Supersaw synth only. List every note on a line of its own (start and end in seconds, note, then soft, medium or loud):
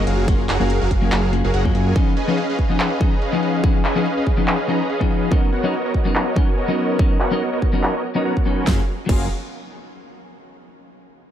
0.07 0.26 F#3 medium
0.07 0.26 F#4 medium
0.07 0.26 G#4 medium
0.07 0.26 A#4 medium
0.07 0.26 F5 medium
0.28 0.42 F#3 medium
0.28 0.42 F#4 medium
0.28 0.42 G#4 medium
0.28 0.42 A#4 medium
0.28 0.42 F5 loud
0.49 0.58 F#3 medium
0.49 0.58 F#4 medium
0.49 0.58 G#4 medium
0.49 0.58 A#4 medium
0.49 0.58 F#5 medium
0.60 0.79 F#3 medium
0.60 0.79 F#4 medium
0.60 0.79 G#4 medium
0.60 0.79 A#4 medium
0.60 0.79 F5 loud
0.81 0.89 F#3 medium
0.81 0.89 F#4 medium
0.81 0.89 G#4 medium
0.81 0.89 A#4 medium
0.81 0.89 F5 loud
0.91 1.10 F#3 medium
0.91 1.10 F#4 medium
0.91 1.10 G#4 medium
0.91 1.10 F5 loud
1.12 1.31 F#3 medium
1.12 1.31 F#4 medium
1.12 1.31 G#4 medium
1.12 1.31 A#4 medium
1.12 1.31 F5 medium
1.44 1.52 F#3 medium
1.44 1.52 F#4 medium
1.44 1.52 G#4 medium
1.44 1.52 A#4 medium
1.44 1.52 F5 medium
1.54 1.63 F#3 loud
1.54 1.63 F#4 medium
1.54 1.63 G#4 medium
1.54 1.63 A#4 medium
1.54 1.63 F#5 loud
1.75 1.93 F#3 loud
1.75 1.93 F#4 medium
1.75 1.93 G#4 medium
1.75 1.93 A#4 medium
1.75 1.93 G#5 loud
1.96 2.10 C#4 medium
1.96 2.10 G#4 medium
1.96 2.10 F5 loud
2.17 2.26 C#4 medium
2.17 2.26 G#4 medium
2.17 2.26 B4 medium
2.17 2.26 D#5 medium
2.17 2.26 G#5 medium
2.28 2.47 C#4 medium
2.28 2.47 G#4 medium
2.28 2.47 B4 medium
2.28 2.47 D#5 medium
2.28 2.47 F5 loud
2.49 2.57 C#4 medium
2.49 2.57 G#4 medium
2.49 2.57 B4 medium
2.49 2.57 D#5 medium
2.49 2.57 F5 loud
2.59 2.78 C#4 loud
2.59 2.78 G#4 medium
2.80 2.99 C#4 medium
2.80 2.99 G#4 medium
2.80 2.99 B4 medium
2.80 2.99 D#5 medium
2.80 2.99 F5 medium
3.01 3.20 C#4 medium
3.22 3.40 C#4 medium
3.22 3.40 G#4 medium
3.22 3.40 B4 medium
3.22 3.40 D#5 medium
3.22 3.40 F5 medium
3.43 3.61 C#4 medium
3.43 3.61 G#4 medium
3.43 3.61 B4 medium
3.43 3.61 D#5 medium
3.43 3.61 F5 medium
3.64 3.78 C#4 medium
3.64 3.78 G#4 medium
3.64 3.78 B4 medium
3.85 3.93 C#4 medium
3.85 3.93 G#4 medium
3.85 3.93 B4 medium
3.85 3.93 D#5 medium
3.85 3.93 G#5 medium
3.96 4.14 C#4 medium
3.96 4.14 G#4 medium
3.96 4.14 B4 medium
3.96 4.14 D#5 medium
3.96 4.14 F5 loud
4.17 4.24 C#4 medium
4.17 4.24 G#4 medium
4.17 4.24 B4 medium
4.17 4.24 D#5 medium
4.17 4.24 F5 loud
4.27 4.45 C#4 loud
4.27 4.45 G#4 medium
4.27 4.45 B4 medium
4.27 4.45 D#5 medium
4.27 4.45 F5 loud
4.48 4.66 C#4 medium
4.48 4.66 G#4 medium
4.48 4.66 B4 medium
4.48 4.66 D#5 medium
4.48 4.66 F5 medium
4.69 4.87 C#4 medium
4.69 4.87 G#4 medium
4.69 4.87 B4 medium
4.69 4.87 D#5 medium
4.69 4.87 A#5 medium
4.90 5.08 C#4 medium
4.90 5.08 G#4 medium
4.90 5.08 B4 medium
4.90 5.08 D#5 medium
4.90 5.08 F5 medium
5.11 5.29 C#4 medium
5.11 5.29 G#4 medium
5.11 5.29 B4 medium
5.11 5.29 D#5 medium
5.11 5.29 F5 medium
5.31 5.46 B3 medium
5.31 5.46 F#4 medium
5.31 5.46 A#4 medium
5.31 5.46 C#5 medium
5.31 5.46 D#5 medium
5.52 5.61 B3 medium
5.52 5.61 F#4 medium
5.52 5.61 A#4 medium
5.52 5.61 C#5 medium
5.52 5.61 F#5 medium
5.64 5.82 B3 medium
5.64 5.82 F#4 medium
5.64 5.82 A#4 medium
5.64 5.82 C#5 medium
5.64 5.82 D#5 medium
5.85 5.92 B3 medium
5.85 5.92 F#4 medium
5.85 5.92 A#4 medium
5.85 5.92 C#5 medium
5.85 5.92 D#5 loud
5.94 6.13 B3 medium
5.94 6.13 F#4 medium
5.94 6.13 A#4 medium
5.94 6.13 C#5 medium
5.94 6.13 D#5 loud
6.15 6.34 B3 medium
6.15 6.34 F#4 medium
6.15 6.34 A#4 medium
6.15 6.34 C#5 medium
6.15 6.34 D#5 medium
6.36 6.55 B3 medium
6.36 6.55 F#4 medium
6.36 6.55 A#4 medium
6.36 6.55 C#5 medium
6.36 6.55 G#5 medium
6.57 6.76 B3 medium
6.57 6.76 F#4 medium
6.57 6.76 A#4 medium
6.57 6.76 C#5 medium
6.57 6.76 D#5 medium
6.78 6.97 B3 medium
6.78 6.97 F#4 medium
6.78 6.97 A#4 medium
6.78 6.97 C#5 medium
6.78 6.97 D#5 medium
6.99 7.13 B3 medium
6.99 7.13 F#4 medium
6.99 7.13 A#4 medium
6.99 7.13 D#5 medium
7.20 7.29 B3 medium
7.20 7.29 F#4 medium
7.20 7.29 A#4 medium
7.20 7.29 C#5 medium
7.20 7.29 F#5 medium
7.32 7.50 B3 medium
7.32 7.50 F#4 medium
7.32 7.50 A#4 medium
7.32 7.50 C#5 medium
7.32 7.50 D#5 loud
7.53 7.60 B3 medium
7.53 7.60 F#4 medium
7.53 7.60 A#4 medium
7.53 7.60 C#5 medium
7.53 7.60 D#5 medium
7.62 7.81 B3 loud
7.62 7.81 F#4 medium
7.62 7.81 D#5 loud
7.83 8.02 B3 medium
7.83 8.02 F#4 medium
7.83 8.02 A#4 medium
7.83 8.02 C#5 medium
7.83 8.02 D#5 medium
8.16 8.23 B3 medium
8.16 8.23 F#4 medium
8.16 8.23 A#4 medium
8.16 8.23 C#5 medium
8.16 8.23 D#5 loud
8.25 8.34 B3 medium
8.25 8.34 F#4 medium
8.25 8.34 A#4 medium
8.25 8.34 C#5 medium
8.25 8.34 F#5 loud
8.37 8.44 C#5 medium
8.46 8.64 B3 loud
8.46 8.64 F#4 medium
8.46 8.64 A#4 medium
8.46 8.64 C#5 medium
8.46 8.64 G#5 loud
8.67 8.80 F#3 medium
8.67 8.80 F#4 medium
8.67 8.80 G#4 medium
8.67 8.80 A#4 medium
8.67 8.80 F5 medium
9.09 9.25 F#3 medium
9.09 9.25 F#4 medium
9.09 9.25 G#4 medium
9.09 9.25 A#4 medium
9.09 9.25 F5 medium